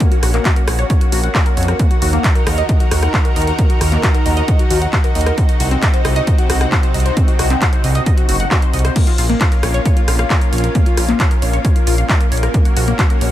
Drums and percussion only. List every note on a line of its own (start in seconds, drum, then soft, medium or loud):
0.00 kick loud
0.00 closed hi-hat medium
0.12 closed hi-hat soft
0.23 cross-stick medium
0.23 open hi-hat loud
0.34 clap soft
0.34 closed hi-hat soft
0.45 kick loud
0.45 clap loud
0.45 closed hi-hat medium
0.56 closed hi-hat soft
0.68 cross-stick medium
0.68 open hi-hat loud
0.79 closed hi-hat soft
0.90 kick loud
0.90 closed hi-hat medium
1.01 closed hi-hat soft
1.12 open hi-hat loud
1.24 closed hi-hat soft
1.35 kick loud
1.35 clap loud
1.35 closed hi-hat soft
1.46 closed hi-hat soft
1.57 open hi-hat loud
1.63 closed hi-hat medium
1.68 cross-stick medium
1.68 closed hi-hat soft
1.79 kick loud
1.79 closed hi-hat medium
1.91 closed hi-hat soft
2.02 open hi-hat loud
2.13 closed hi-hat soft
2.24 kick loud
2.24 clap loud
2.24 closed hi-hat medium
2.35 closed hi-hat soft
2.47 cross-stick medium
2.47 open hi-hat loud
2.58 closed hi-hat soft
2.69 kick loud
2.69 closed hi-hat medium
2.80 closed hi-hat medium
2.91 cross-stick medium
2.91 open hi-hat loud
3.03 cross-stick medium
3.03 closed hi-hat medium
3.14 kick loud
3.14 clap loud
3.14 closed hi-hat soft
3.25 closed hi-hat soft
3.36 open hi-hat loud
3.42 closed hi-hat medium
3.47 closed hi-hat medium
3.59 kick loud
3.59 closed hi-hat medium
3.70 closed hi-hat medium
3.81 cross-stick medium
3.81 open hi-hat loud
3.92 clap soft
3.92 closed hi-hat soft
4.03 kick loud
4.03 clap loud
4.03 closed hi-hat medium
4.15 closed hi-hat medium
4.26 open hi-hat loud
4.37 closed hi-hat medium
4.48 kick loud
4.48 closed hi-hat medium
4.59 closed hi-hat medium
4.70 open hi-hat loud
4.82 closed hi-hat medium
4.93 kick loud
4.93 clap loud
4.93 closed hi-hat soft
5.04 closed hi-hat medium
5.15 open hi-hat loud
5.21 closed hi-hat medium
5.26 cross-stick medium
5.26 closed hi-hat medium
5.38 kick loud
5.38 closed hi-hat medium
5.49 closed hi-hat medium
5.60 open hi-hat loud
5.71 closed hi-hat medium
5.82 kick loud
5.82 clap loud
5.82 closed hi-hat medium
5.94 closed hi-hat medium
6.05 cross-stick medium
6.05 open hi-hat loud
6.16 closed hi-hat medium
6.27 kick loud
6.27 closed hi-hat medium
6.38 closed hi-hat medium
6.50 cross-stick medium
6.50 open hi-hat loud
6.61 cross-stick medium
6.61 closed hi-hat medium
6.72 kick loud
6.72 clap loud
6.72 closed hi-hat soft
6.83 closed hi-hat medium
6.94 open hi-hat loud
7.00 closed hi-hat medium
7.06 closed hi-hat medium
7.17 kick loud
7.17 closed hi-hat medium
7.28 closed hi-hat medium
7.39 cross-stick medium
7.39 open hi-hat loud
7.50 clap soft
7.50 closed hi-hat medium
7.62 kick loud
7.62 clap loud
7.62 closed hi-hat medium
7.73 closed hi-hat medium
7.84 open hi-hat loud
7.95 closed hi-hat medium
8.06 kick loud
8.06 closed hi-hat medium
8.18 closed hi-hat medium
8.29 open hi-hat loud
8.40 closed hi-hat medium
8.51 kick loud
8.51 clap loud
8.51 closed hi-hat soft
8.62 closed hi-hat medium
8.73 open hi-hat loud
8.79 closed hi-hat medium
8.85 cross-stick medium
8.85 closed hi-hat medium
8.96 kick loud
8.96 closed hi-hat medium
8.96 crash medium
9.07 closed hi-hat medium
9.18 open hi-hat loud
9.30 closed hi-hat medium
9.41 kick loud
9.41 clap loud
9.41 closed hi-hat medium
9.52 closed hi-hat medium
9.63 cross-stick medium
9.63 open hi-hat loud
9.74 closed hi-hat medium
9.85 kick loud
9.85 closed hi-hat medium
9.97 closed hi-hat medium
10.08 cross-stick medium
10.08 open hi-hat loud
10.19 cross-stick medium
10.19 closed hi-hat medium
10.30 kick loud
10.30 clap loud
10.30 closed hi-hat soft
10.41 closed hi-hat medium
10.53 open hi-hat loud
10.58 closed hi-hat medium
10.64 closed hi-hat medium
10.75 kick loud
10.75 closed hi-hat medium
10.86 closed hi-hat soft
10.97 cross-stick medium
10.97 open hi-hat loud
11.09 clap soft
11.09 closed hi-hat medium
11.20 kick loud
11.20 clap loud
11.20 closed hi-hat medium
11.31 closed hi-hat medium
11.42 open hi-hat loud
11.53 closed hi-hat medium
11.65 kick loud
11.65 closed hi-hat medium
11.76 closed hi-hat medium
11.87 open hi-hat loud
11.98 closed hi-hat medium
12.09 kick loud
12.09 clap loud
12.09 closed hi-hat soft
12.21 closed hi-hat medium
12.32 open hi-hat loud
12.37 closed hi-hat medium
12.43 cross-stick medium
12.43 closed hi-hat medium
12.54 kick loud
12.54 closed hi-hat medium
12.65 closed hi-hat soft
12.77 open hi-hat loud
12.88 closed hi-hat medium
12.99 kick loud
12.99 clap loud
12.99 closed hi-hat medium
13.10 closed hi-hat soft
13.21 open hi-hat loud